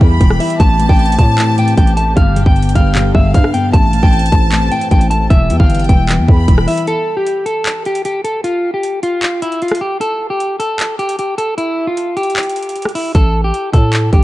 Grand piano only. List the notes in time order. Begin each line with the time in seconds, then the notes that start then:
0.00 E3
0.21 E3
0.40 E4
0.60 A2
0.79 A2
1.19 A2
1.38 A2
1.58 A2
1.77 A2
1.97 A3
2.17 G2
2.36 G2
2.76 G2
2.95 G2
3.15 G2
3.34 G2
3.54 B3
3.74 A2
3.93 A2
4.32 A2
4.52 A2
4.72 A2
4.91 A2
5.11 A3
5.30 E3
5.50 E3
5.89 E3
6.09 E3
6.28 E3
6.48 E3
6.68 E4